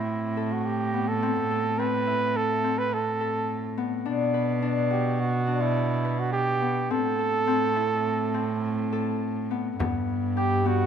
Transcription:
Already playing: A2 C4 E4 A4
0.37 A4
0.52 F#4
0.65 G4
0.94 B3
1.08 A4
1.22 C4
1.51 A4
1.79 C4 B4
2.07 E4
2.36 A4
2.64 C4
2.78 B4
2.93 A4
3.20 A4
3.78 B3
4.06 B2 D4
4.34 B4
4.62 D4
4.91 F#4 G4
5.20 F#4
5.47 D4
5.61 E4
6.05 B4
6.19 F#4
6.32 G4
6.62 B3
6.90 A2 C4 A4
7.19 A4
7.47 C4
7.76 E4
8.34 C4
8.92 A4
9.51 B3
9.79 G2 B3, frame drum
10.09 frame drum
10.37 G4
10.65 B3 F#4

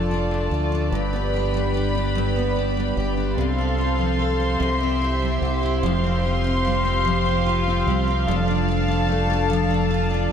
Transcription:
Already playing: F1 F3 A3 D4 F4 A4 D5 A5
0.11 D4
0.31 A3
0.51 D2 F4
0.72 D4
0.91 G1 G2 G4 B4 B5
1.13 B3
1.34 D4
1.54 G3
1.74 G4
1.95 D4
2.15 G2
2.36 B3
2.56 D4
2.77 G3
2.97 G1 G4
3.17 D4
3.37 C2 C3 A4 C5 F5 C6
3.58 C4
3.78 F4
3.98 F3
4.19 A4
4.40 F4
4.60 C2 C3 G4 E5
4.80 C4
5.02 E4
5.22 G3
5.42 C2 G4
5.63 E4
5.83 F1 F3 G4 C5 F5 C6
6.04 C4
6.24 F4
6.44 C4
6.65 G3
6.85 C4
7.05 F3
7.26 C4
7.46 F4
7.67 C4
7.86 C2 G3
8.08 C4
8.27 F1 F3 D4 A4 A5
8.48 D4
8.68 F4
8.88 D4
9.09 A3
9.30 D4
9.50 F3
9.71 D4
9.90 F4
10.11 D4

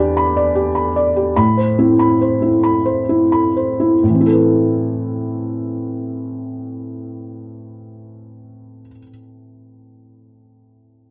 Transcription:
Already playing: E2 D4 D5 B5
0.00 G4
0.17 B5
0.37 D5
0.55 G4
0.75 B5
0.96 D5
1.16 G4
1.36 A2 B5
1.57 C5
1.79 C4 E4
1.99 B5
2.21 C5
2.42 E4
2.63 B5
2.85 C5
3.09 E4
3.32 B5
3.57 C5
3.80 E4
4.03 A2
4.09 E3
4.14 C4
4.21 E4
4.26 A4
4.32 B4

